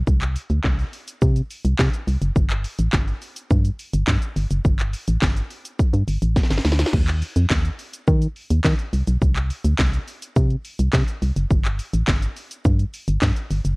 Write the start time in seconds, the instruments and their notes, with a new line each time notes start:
0.07 fm bass C2, kick, shaker
0.22 clap, closed hi-hat, shaker
0.36 open hi-hat, shaker
0.50 fm bass D2, closed hi-hat, shaker
0.64 fm bass C2, kick, snare, clap, shaker
0.79 closed hi-hat, shaker
0.93 open hi-hat, shaker
1.08 closed hi-hat, shaker
1.22 fm bass C3, kick, shaker
1.36 closed hi-hat, shaker
1.51 open hi-hat, shaker
1.65 fm bass C2, closed hi-hat, shaker
1.79 fm bass C3, kick, snare, clap, shaker
1.94 closed hi-hat, shaker
2.08 fm bass C2, open hi-hat, shaker
2.22 fm bass F#1, closed hi-hat, shaker
2.36 fm bass G1, kick, shaker
2.50 clap, closed hi-hat, shaker
2.64 open hi-hat, shaker
2.79 fm bass A1, closed hi-hat, shaker
2.93 fm bass G1, kick, snare, clap, shaker
3.08 closed hi-hat, shaker
3.22 open hi-hat, shaker
3.36 closed hi-hat, shaker
3.50 fm bass G2, kick, shaker
3.65 closed hi-hat, shaker
3.79 open hi-hat, shaker
3.93 fm bass G1, closed hi-hat, shaker
4.07 fm bass G2, kick, snare, clap, shaker
4.22 closed hi-hat, shaker
4.36 fm bass G1, open hi-hat, shaker
4.51 fm bass F#1, closed hi-hat, shaker
4.65 fm bass G1, kick, shaker
4.79 clap, closed hi-hat, shaker
4.93 open hi-hat, shaker
5.07 fm bass A1, closed hi-hat, shaker
5.22 fm bass G1, kick, snare, clap, shaker
5.36 closed hi-hat, shaker
5.50 open hi-hat, shaker
5.65 closed hi-hat, shaker
5.79 kick, shaker
5.93 fm bass G2, closed hi-hat, shaker
6.08 fm bass G1, open hi-hat, shaker
6.22 fm bass A1, closed hi-hat, shaker
6.36 kick, snare, shaker
6.43 snare
6.50 fm bass G1, snare, closed hi-hat, shaker
6.58 snare
6.65 fm bass D2, snare, open hi-hat, shaker
6.72 snare
6.79 snare, closed hi-hat, shaker
6.86 snare
6.93 fm bass D#2, kick, crash
7.08 clap, closed hi-hat, shaker
7.22 open hi-hat, shaker
7.36 fm bass F2, closed hi-hat, shaker
7.50 fm bass D#2, kick, snare, clap, shaker
7.65 closed hi-hat, shaker
7.79 open hi-hat, shaker
7.93 closed hi-hat, shaker
8.07 fm bass D#3, kick, shaker
8.22 closed hi-hat, shaker
8.36 open hi-hat, shaker
8.50 fm bass D#2, closed hi-hat, shaker
8.65 fm bass D#3, kick, snare, clap, shaker
8.79 closed hi-hat, shaker
8.93 fm bass C2, open hi-hat, shaker
9.07 fm bass B1, closed hi-hat, shaker
9.22 fm bass C2, kick, shaker
9.36 clap, closed hi-hat, shaker
9.50 open hi-hat, shaker
9.65 fm bass D2, closed hi-hat, shaker
9.79 fm bass C2, kick, snare, clap, shaker
9.93 closed hi-hat, shaker
10.08 open hi-hat, shaker
10.22 closed hi-hat, shaker
10.36 fm bass C3, kick, shaker
10.50 closed hi-hat, shaker
10.65 open hi-hat, shaker
10.79 fm bass C2, closed hi-hat, shaker
10.93 fm bass C3, kick, snare, clap, shaker
11.08 closed hi-hat, shaker
11.22 fm bass C2, open hi-hat, shaker
11.36 fm bass F#1, closed hi-hat, shaker
11.50 fm bass G1, kick, shaker
11.65 clap, closed hi-hat, shaker
11.79 open hi-hat, shaker
11.93 fm bass A1, closed hi-hat, shaker
12.08 fm bass G1, kick, snare, clap, shaker
12.22 closed hi-hat, shaker
12.36 open hi-hat, shaker
12.51 closed hi-hat, shaker
12.65 fm bass G2, kick, shaker
12.79 closed hi-hat, shaker
12.94 open hi-hat, shaker
13.08 fm bass G1, closed hi-hat, shaker
13.22 fm bass G2, kick, snare, clap, shaker
13.36 closed hi-hat, shaker
13.51 fm bass G1, open hi-hat, shaker
13.65 fm bass F#1, closed hi-hat, shaker